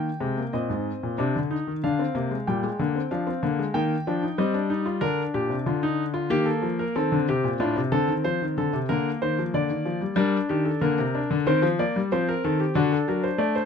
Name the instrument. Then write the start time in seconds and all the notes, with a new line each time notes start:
grand piano
Already playing: G5
0.20 C3 G#3
0.37 A#3
0.53 A#2 C4 D#5
0.70 G#2
1.03 A#2
1.18 C3 D4
1.36 D3
1.51 D#4
1.67 D#3
1.84 D3 D4 F5
1.99 C4
2.15 C3 A#3
2.31 G#3
2.47 A#2 G3 G5
2.64 G#3
2.79 D3 A#3
2.95 C4
3.11 F3 D4 F5
3.27 C4
3.43 D3 A#3
3.59 G#3
3.74 D#3 A#3 G5
4.07 F3 D4
4.23 D#4
4.38 G3 C4 D#5
4.54 D4
4.70 D#4
4.86 F4
5.01 D3 D4 A#4
5.34 A#2 G4
5.50 C3
5.66 D3 F4
5.83 D#4
6.14 F4
6.30 D#3 A#3 G4
6.46 A4
6.62 F3
6.79 A#4
6.96 D#3 C4 A4
7.12 D3
7.29 C3 G4
7.44 A#2
7.60 A2 D4 F4
7.76 C3
7.92 D3 C4 A4
8.08 D#3
8.24 F3 C5
8.42 D#3
8.58 D3 A4
8.73 C3
8.89 D3 A#3 A#4
9.22 D#3 C5
9.39 F3
9.54 D3 D5
9.70 D#3
9.85 F3
10.01 G3
10.16 G3 D4 A#4
10.49 D#3 G4
10.65 A4
10.81 D3 A#3 A#4
10.99 C3
11.15 D4
11.31 D3
11.47 D#3 C4 C5
11.62 F3
11.79 A#3 D5
11.96 G3
12.12 F3 C4 C5
12.29 A#4
12.44 D#3 A4
12.60 G4
12.75 D3 D4 F#4
12.92 A4
13.08 F#3 A#4
13.23 C5
13.38 A3 D5
13.56 C5